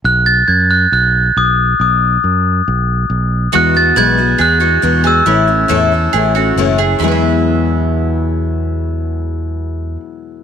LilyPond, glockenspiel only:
\new Staff \with { instrumentName = "Glockenspiel" } { \time 4/4 \key e \major \tempo 4 = 138 fis'''8 a'''8 gis'''8 fis'''8 fis'''4 dis'''4 | dis'''2.~ dis'''8 r8 | fis'''8 a'''8 gis'''4 fis'''4. e'''8~ | e'''2. r4 |
r1 | r1 | }